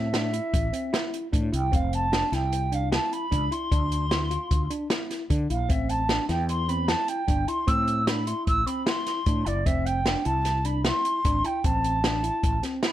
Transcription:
Already playing: fretless electric bass A2, flute E5
0.13 tine electric piano D4, snare, closed hi-hat
0.33 tine electric piano E4, closed hi-hat
0.54 fretless electric bass A1, kick, closed hi-hat
0.73 tine electric piano C4, closed hi-hat
0.93 tine electric piano E4, snare, closed hi-hat
1.14 closed hi-hat
1.32 fretless electric bass A2, tine electric piano D4, kick, closed hi-hat
1.52 fretless electric bass C2, tine electric piano E4, flute G5, closed hi-hat
1.72 fretless electric bass F1, tine electric piano C4, flute F5, kick, closed hi-hat
1.93 flute A5, closed hi-hat
2.12 tine electric piano D4, snare, closed hi-hat
2.32 fretless electric bass C2, tine electric piano E4, flute G5, snare, closed hi-hat
2.53 closed hi-hat
2.72 tine electric piano D4, flute F5, closed hi-hat
2.92 tine electric piano E4, flute A5, snare, closed hi-hat
3.13 flute B5, closed hi-hat
3.31 fretless electric bass C#2, tine electric piano D4, kick, closed hi-hat
3.51 tine electric piano E4, flute C6, closed hi-hat
3.71 fretless electric bass D2, tine electric piano D4, kick, closed hi-hat
3.92 closed hi-hat
4.11 tine electric piano E4, snare, closed hi-hat
4.31 tine electric piano F4, closed hi-hat
4.51 fretless electric bass D2, kick, closed hi-hat
4.70 tine electric piano D4, closed hi-hat
4.90 tine electric piano E4, snare, closed hi-hat
5.11 snare, closed hi-hat
5.30 fretless electric bass D3, tine electric piano D4, kick, closed hi-hat
5.50 fretless electric bass A#1, tine electric piano E4, flute F5, closed hi-hat
5.69 fretless electric bass A1, tine electric piano C4, flute E5, kick, closed hi-hat
5.89 flute A5, closed hi-hat
6.09 tine electric piano D4, snare, closed hi-hat
6.29 fretless electric bass E2, tine electric piano E4, flute G5, snare, closed hi-hat
6.49 flute C6, closed hi-hat
6.68 tine electric piano C4, flute B5, closed hi-hat
6.88 tine electric piano E4, flute A5, snare, closed hi-hat
7.08 flute G5, closed hi-hat
7.28 fretless electric bass G1, tine electric piano D4, kick, closed hi-hat
7.48 tine electric piano E4, flute C6, closed hi-hat
7.67 fretless electric bass A2, tine electric piano C4, flute E6, kick, closed hi-hat
7.88 closed hi-hat
8.07 tine electric piano D4, flute B5, snare, closed hi-hat
8.26 tine electric piano E4, flute C6, closed hi-hat
8.47 fretless electric bass A1, flute E6, kick, closed hi-hat
8.66 tine electric piano C4, flute B5, closed hi-hat
8.86 tine electric piano E4, flute C6, snare, closed hi-hat
9.07 snare, closed hi-hat
9.26 fretless electric bass A2, tine electric piano D4, kick, closed hi-hat
9.46 fretless electric bass F#1, tine electric piano E4, flute D5, closed hi-hat
9.66 fretless electric bass F1, tine electric piano C4, flute E5, kick, closed hi-hat
9.85 flute G5, closed hi-hat
10.06 tine electric piano D4, snare, closed hi-hat
10.25 fretless electric bass C2, tine electric piano E4, flute A5, closed hi-hat
10.45 snare, closed hi-hat
10.65 tine electric piano D4, flute B5, closed hi-hat
10.85 tine electric piano E4, flute C6, snare, closed hi-hat
11.05 closed hi-hat
11.25 fretless electric bass G#1, tine electric piano D4, kick, closed hi-hat
11.44 tine electric piano E4, flute G5, closed hi-hat
11.64 fretless electric bass A1, tine electric piano C4, flute A5, kick, closed hi-hat
11.84 closed hi-hat
12.04 tine electric piano D4, snare, closed hi-hat
12.23 tine electric piano E4, closed hi-hat
12.43 fretless electric bass A1, kick, closed hi-hat
12.63 tine electric piano C4, snare, closed hi-hat
12.83 tine electric piano E4, flute B5, snare, closed hi-hat

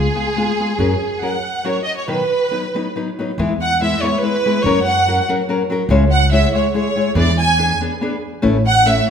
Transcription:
Already playing: violin section G#4
0.15 nylon-string guitar G#3 B3 F4 G#4
0.36 nylon-string guitar G#3 B3 F4 G#4
0.60 nylon-string guitar G#3 B3 F4 G#4
0.79 upright bass F#2, nylon-string guitar F#3 C#4 F#4 A#4
1.22 nylon-string guitar F#3 C#4 F#4 A#4, violin section F#5
1.64 nylon-string guitar F#3 C#4 F#4 A#4, violin section C#5
1.84 violin section D#5
1.96 violin section C#5
2.07 nylon-string guitar B2 D#3 F#3 B3 D#4 B4, violin section B4
2.51 nylon-string guitar F#3 B3 D#4 B4
2.74 nylon-string guitar F#3 B3 D#4 B4
2.96 nylon-string guitar F#3 B3 D#4 B4
3.19 nylon-string guitar F#3 B3 D#4 B4
3.38 upright bass E2, nylon-string guitar E3 G#3 B3 E4 B4
3.61 violin section F#5
3.81 nylon-string guitar G#3 B3 E4 B4, violin section E5
4.02 nylon-string guitar G#3 B3 E4 B4, violin section C#5
4.23 nylon-string guitar G#3 B3 E4 B4, violin section B4
4.46 nylon-string guitar G#3 B3 E4 B4
4.64 upright bass F#2, nylon-string guitar F#3 C#4 F#4 A#4, violin section C#5
4.85 violin section F#5
5.07 nylon-string guitar F#3 C#4 F#4 A#4
5.29 nylon-string guitar F#3 C#4 F#4 A#4
5.49 nylon-string guitar F#3 C#4 F#4 A#4
5.70 nylon-string guitar F#3 C#4 F#4 A#4
5.89 upright bass C#2, nylon-string guitar C#3 G#3 E4 G#4 C#5
6.12 violin section F#5
6.32 nylon-string guitar G#3 E4 G#4 C#5, violin section E5
6.54 nylon-string guitar G#3 E4 G#4 C#5, violin section C#5
6.74 nylon-string guitar G#3 E4 G#4 C#5, violin section C#5
6.96 nylon-string guitar G#3 E4 G#4 C#5
7.15 upright bass E2, nylon-string guitar E3 B3 D4 G#4 B4, violin section D5
7.39 violin section G#5
7.58 nylon-string guitar B3 D4 G#4 B4
7.81 nylon-string guitar B3 D4 G#4 B4
8.01 nylon-string guitar B3 D4 G#4 B4
8.42 upright bass A1, nylon-string guitar A3 C#4 E4 B4
8.67 violin section F#5
8.86 nylon-string guitar A3 C#4 E4 B4, violin section E5

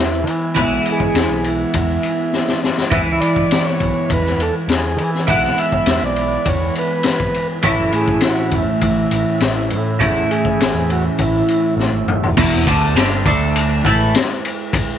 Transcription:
Already playing: picked electric bass E2, clean electric guitar E3 G#3 B3 E4, transistor combo organ E4, tonewheel organ E4 B4 G#5
0.24 picked electric bass E3, ride
0.55 picked electric bass B1, clean electric guitar E3 G#3 B3 E4, kick, ride
0.61 transistor combo organ E4
0.85 ride
0.92 transistor combo organ G#4
1.00 kick
1.14 picked electric bass E2, snare, ride
1.29 picked electric bass B1
1.44 transistor combo organ E4, ride
1.74 picked electric bass E2, kick, ride
2.03 ride
2.33 snare
2.48 snare
2.64 snare
2.78 snare
2.91 picked electric bass E2, clean electric guitar E3 G#3 B3 E4, transistor combo organ E5, kick, ride
3.07 picked electric bass C#2
3.12 transistor combo organ E5
3.21 picked electric bass E3, transistor combo organ D5, ride
3.36 kick
3.51 snare, ride
3.65 transistor combo organ C#5, snare
3.80 picked electric bass B1, kick, ride
4.10 picked electric bass E2, transistor combo organ B4, kick, ride
4.26 snare
4.38 picked electric bass E2, ride
4.42 transistor combo organ A4
4.68 picked electric bass E2, transistor combo organ G#4, snare, ride
4.97 picked electric bass E3, ride
5.15 snare
5.27 picked electric bass B1, clean electric guitar E3 G#3 B3 E4, transistor combo organ F#5, kick, ride
5.44 snare
5.58 transistor combo organ E5, ride
5.72 kick
5.86 picked electric bass E2, snare, ride
6.02 picked electric bass B1, transistor combo organ D5
6.16 ride
6.45 picked electric bass E2, transistor combo organ C#5, kick, ride
6.75 transistor combo organ B4, ride
7.03 snare, ride
7.08 transistor combo organ B4
7.20 kick
7.34 ride
7.62 picked electric bass A1, clean electric guitar A2 E3 A3 C#4 E4, tonewheel organ E4 C#5 E5, kick, ride
7.66 transistor combo organ E4
7.77 picked electric bass F#1
7.93 picked electric bass A2, transistor combo organ G#4, ride
8.08 kick
8.21 snare, ride
8.27 transistor combo organ F#4
8.51 picked electric bass E2, kick, ride
8.58 transistor combo organ E4
8.81 picked electric bass A1, kick, ride
9.11 picked electric bass A1, ride
9.40 picked electric bass A1, snare, ride
9.70 picked electric bass A2, ride
9.99 picked electric bass E2, clean electric guitar A2 E3 A3 C#4 E4, transistor combo organ E4, kick, ride
10.31 transistor combo organ G#4, ride
10.45 kick
10.59 picked electric bass A1, snare, ride
10.74 picked electric bass E2
10.90 transistor combo organ F#4, ride
11.18 picked electric bass A1, transistor combo organ E4, kick, ride
11.48 ride
11.76 picked electric bass A1, snare
11.90 picked electric bass G#1
12.05 picked electric bass F#1, mid tom
12.21 picked electric bass E1, floor tom
12.36 picked electric bass E1, clean electric guitar E2 B2 E3, tonewheel organ B3 G#4 E5, kick, crash
12.54 snare
12.67 picked electric bass D2, clean electric guitar D3 A3 D4, kick, ride
12.95 picked electric bass G1, clean electric guitar G2 D3 G3, snare, ride
13.25 picked electric bass D2, clean electric guitar D3 A3 D4, tonewheel organ A3 D4 D5, kick, ride
13.56 ride
13.84 picked electric bass A1, clean electric guitar A2 E3 A3, tonewheel organ G#3 E4 B4, kick, ride
14.15 snare, ride
14.45 ride
14.73 kick, ride

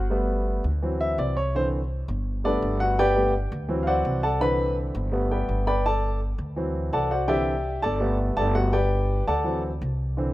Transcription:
Already playing: upright bass G1
0.10 grand piano G3 A3 B3
0.64 upright bass D2
0.82 grand piano E3 F#3 C4
1.01 grand piano E5
1.18 upright bass C2, grand piano D5
1.37 grand piano C#5
1.55 grand piano D3 E3 C4 C5
2.08 upright bass G1
2.44 grand piano G3 A3 B3 D4 A4 B4 D5
2.62 upright bass G1
2.80 grand piano F#4 F#5
2.99 grand piano G4 B4 D5 G5
3.16 grand piano G3 A3 B3
3.52 upright bass D2
3.69 grand piano E3 F#3 C4
3.83 grand piano F5
3.87 grand piano F#4 C5 D5 F#5
4.05 upright bass C2
4.23 grand piano A4 D5 F#5 A5
4.40 grand piano D3 E3 C4 B4 B5
4.95 upright bass G1
5.12 grand piano G3 A3 B3
5.31 grand piano G4 B4 D5 G5
5.49 upright bass G1
5.67 grand piano B4 D5 G5 B5
5.86 grand piano A4 D5 A5
6.38 upright bass D2
6.56 grand piano E3 F#3 C4
6.93 upright bass C2, grand piano A4 D5 F#5 A5
7.11 grand piano F#4 C5 D5 F#5
7.27 grand piano D3 E3 C4 G4 D5 E5 G5
7.82 upright bass G1, grand piano A4 D5 A5
8.00 grand piano G3 A3 B3
8.37 upright bass G1, grand piano A4 D5 A5
8.54 grand piano G3 A3 B3 F#4 F#5
8.73 grand piano G4 B4 D5 G5
9.27 upright bass D2, grand piano A4 D5 F#5 A5
9.44 grand piano E3 F#3 C4
9.82 upright bass C2
10.17 grand piano D3 E3 C4

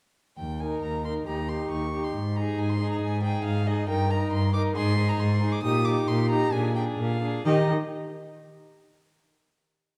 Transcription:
0.37 cello D#2, violin G5
0.60 viola D#4, violin A#4 G#5
0.82 cello D#2, violin A#5
1.05 viola D#4, violin A#4 C6
1.27 cello D#2, viola D#4, violin G4 A#5
1.49 viola D#4, violin G4 C6
1.71 cello D#2, violin C#6
1.93 viola D#4, violin G4
2.04 violin C6
2.14 cello G#2
2.36 viola D#4, violin G#4 A#5
2.58 cello G#2, violin G#5
2.70 violin C6
2.80 viola D#4, violin G#4
2.91 violin A#5
3.01 cello G#2, violin G#5
3.23 viola D#4, violin G#4 G5
3.45 cello G#2, violin F5
3.67 viola D#4, violin G#4 D#5
3.89 cello G2, viola D#4, violin A#4 G5
4.10 viola D#4, violin A#4 A#5
4.33 cello G2, violin C6
4.54 viola D#4, violin A#4 D6
4.76 cello G#2, viola D#4, violin G#4 C6
4.98 viola D#4, violin G#4
5.09 violin A#5
5.20 cello G#2, violin C6
5.42 viola D#4, violin G#4
5.52 violin D6
5.63 cello A#2, viola D#4, violin G4 D#6
5.85 viola D#4, violin G4 D6
6.08 cello A#2, violin C6
6.30 viola D#4, violin G4 A#5
6.53 cello A#2, viola D4, violin G#4 G#5
6.76 viola D4, violin G#4 G5
6.98 cello A#2, violin F5
7.22 viola D4, violin G#4
7.45 cello D#3, viola D#4, violin G4 D#5

